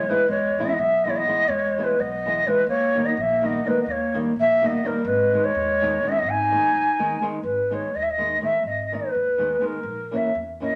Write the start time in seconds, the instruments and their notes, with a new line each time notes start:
Already playing: ney C#5
0.06 nylon-string guitar E3 G#3, clarinet G#3, ney B4
0.10 nylon-string guitar B3 E4
0.27 upright bass E2, clarinet G#3, ney C#5
0.58 nylon-string guitar E3 G#3 B3 E4
0.63 clarinet B3, ney D#5
0.67 clarinet C#4, ney E5
0.72 clarinet B3, ney D#5
0.78 upright bass B1, clarinet B3, ney E5
1.04 nylon-string guitar E3 G#3 B3 E4, clarinet B3, ney D#5
1.09 clarinet A#3, ney C#5
1.16 clarinet B3, ney D#5
1.27 nylon-string guitar E3 G#3 B3 E4
1.48 upright bass E2, clarinet G#3, ney C#5
1.78 nylon-string guitar E3 G#3 B3 E4
1.83 clarinet G#3, ney B4
1.99 upright bass B1, clarinet B3, ney D#5
2.26 nylon-string guitar E3 G#3 B3 E4
2.46 nylon-string guitar E3 G#3 B3 E4, clarinet G#3, ney B4
2.67 upright bass D#2, clarinet A#3, ney C#5
2.95 nylon-string guitar D#3 G3 A#3 D#4
3.04 clarinet B3, ney D#5
3.17 upright bass A#1, ney E5
3.21 clarinet A#3
3.42 nylon-string guitar D#3 G3 A#3 D#4, clarinet B3, ney D#5
3.65 nylon-string guitar D#3 G3 A#3 D#4, clarinet G#3, ney B4
3.80 clarinet B3, ney D#5
3.86 upright bass D#2, clarinet A#3
3.90 ney C#5
4.14 nylon-string guitar D#3 G3 A#3 D#4
4.36 upright bass A#1, clarinet A#3, ney E5
4.61 nylon-string guitar D#3 G3 A#3 D#4, clarinet B3
4.66 ney D#5
4.83 nylon-string guitar D#3 G3 A#3 D#4, clarinet G3, ney A#4
5.05 upright bass G#1, clarinet G#3, ney B4
5.33 nylon-string guitar D#3 G#3 B3 D#4
5.43 clarinet G#3, ney C#5
5.55 upright bass D#2
5.81 nylon-string guitar D#3 G#3 B3 D#4
6.02 nylon-string guitar D#3 G#3 B3 D#4
6.07 clarinet B3 C#4, ney D#5 E5
6.15 clarinet B3, ney D#5
6.22 upright bass G#1
6.27 clarinet D#4, ney G#5
6.51 nylon-string guitar D#3 G#3 B3 D#4
6.75 upright bass D#2
6.99 nylon-string guitar D#3 G#3 B3 D#4
7.21 nylon-string guitar D#3 G#3 B3 D#4
7.43 upright bass G#1, ney B4
7.70 nylon-string guitar D#3 G#3 B3 D#4, ney C#5
7.95 upright bass D#2, ney D#5
8.02 ney E5
8.09 ney D#5
8.18 nylon-string guitar D#3 G#3 B3 D#4
8.41 nylon-string guitar D#3 G#3 B3 D#4, ney E5
8.63 upright bass G#1, ney D#5
8.92 nylon-string guitar D#3 G#3 B3 D#4, ney B4
9.15 upright bass D#2
9.38 nylon-string guitar D#3 G#3 B3 D#4
9.61 nylon-string guitar D#3 G#3 B3 D#4, ney A#4
9.83 upright bass A#1
10.11 nylon-string guitar E3 A#3 C#4 E4
10.16 ney E5
10.35 upright bass E2
10.60 nylon-string guitar E3 A#3 C#4 E4, ney D#5